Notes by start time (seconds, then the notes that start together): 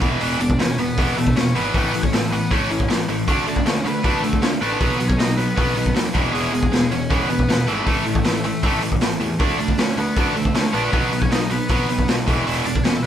0.00 E1 E2 B2 E3, kick, open hi-hat
0.20 E1 E2 B2 E3, open hi-hat
0.40 E1 E2 B2 D4 D5, open hi-hat
0.50 kick
0.58 E1 E2 B2 C#4 C#5, snare, open hi-hat
0.77 E1 E2 B2 B3 B4, open hi-hat
0.97 E1 E2 B2 E3, kick, open hi-hat
1.16 E1 E2 B2 A3 A4, open hi-hat
1.27 kick
1.36 E1 E2 B2 C#4 C#5, snare, open hi-hat
1.55 G#1 E2 B2 E3 B3 B4, open hi-hat
1.74 A1 A2 E3 A3, kick, open hi-hat
1.93 A1 A2 E3, open hi-hat
2.03 C#4 C#5, kick
2.12 A1 A2 E3 A3 A4, snare, open hi-hat
2.31 A2 E3 B3 B4, open hi-hat
2.51 A1 A2 E3 A3 C#4 C#5, kick, open hi-hat
2.70 A1 A2 E3, open hi-hat
2.80 kick
2.88 A1 A2 E3, snare, open hi-hat
3.09 A1 A2 E3, open hi-hat
3.28 D2 D3 A3 D4, kick, open hi-hat
3.47 D2 D3 A3 D4 D5, open hi-hat
3.56 kick
3.66 D2 D3 A3 C#4 C#5, snare, open hi-hat
3.84 D2 D3 A3 B3 B4, open hi-hat
4.04 D2 D3 A3 D4, kick, open hi-hat
4.23 D2 D3 A3 A4, open hi-hat
4.33 kick
4.42 D2 D3 A3 C#4 C#5, snare, open hi-hat
4.62 A1 D3 A3 B3 D4 B4, open hi-hat
4.81 B1 B2 F#3 B3, kick, open hi-hat
5.00 B1 B2 F#3, open hi-hat
5.08 C#4 C#5, kick
5.18 B1 B2 F#3 D#4 D#5, snare, open hi-hat
5.37 B2 F#3 B3 B4, open hi-hat
5.56 B1 B2 F#3 B3 B4, kick, open hi-hat
5.76 B1 B2 F#3, open hi-hat
5.86 kick
5.95 D#2 B2 F#3, snare, open hi-hat
6.14 E1 E2 B2 E3, kick, open hi-hat
6.33 E1 E2 B2 E3 G#3 G#4, open hi-hat
6.52 E1 E2 B2 G#3 G#4, open hi-hat
6.63 kick
6.72 E1 E2 B2, snare, open hi-hat
6.91 E1 E2 B2 C#4 C#5, open hi-hat
7.10 E1 E2 B2 E3, kick, open hi-hat
7.28 E1 E2 B2 B3 B4, open hi-hat
7.39 kick
7.47 E1 E2 B2, snare, open hi-hat
7.66 G#1 E2 B2 E3 A3 A4, open hi-hat
7.86 A1 A2 E3 A3, kick, open hi-hat
8.05 A1 A2 E3, open hi-hat
8.15 kick
8.24 A1 A2 E3, snare, open hi-hat
8.44 A2 E3, open hi-hat
8.63 A1 A2 E3 A3, kick, open hi-hat
8.82 A1 A2 E3, open hi-hat
8.92 kick
9.01 A1 A2 E3, snare, open hi-hat
9.20 E2 A2 E3, open hi-hat
9.39 D2 D3 A3 D4, kick, open hi-hat
9.57 D2 D3 A3 D4 D5, open hi-hat
9.68 kick
9.77 D2 D3 A3 C#4 C#5, snare, open hi-hat
9.96 D2 D3 A3 B3 B4, open hi-hat
10.16 D2 D3 A3 D4, kick, open hi-hat
10.35 D2 D3 A3 A4, open hi-hat
10.45 kick
10.54 D2 D3 A3 C#4 C#5, snare, open hi-hat
10.73 A#1 D3 A3 B3 D4 B4, open hi-hat
10.92 B1 B2 F#3 B3, kick, open hi-hat
11.12 B1 B2 F#3, open hi-hat
11.22 C#4 C#5, kick
11.31 B1 B2 F#3 D#4 D#5, snare, open hi-hat
11.50 B2 F#3 B3 B4, open hi-hat
11.69 B1 B2 F#3 B3 B4, kick, open hi-hat
11.88 B1 B2 F#3, open hi-hat
11.99 kick
12.08 B1 B2 F#3, snare, open hi-hat
12.27 E1 E2 B2 E3, kick, open hi-hat
12.47 E1 E2 B2 E3, open hi-hat
12.65 E1 E2 B2 D4 D5, open hi-hat
12.76 kick
12.83 E1 E2 B2 C#4 C#5, snare, open hi-hat
12.97 A4
13.03 B3 B4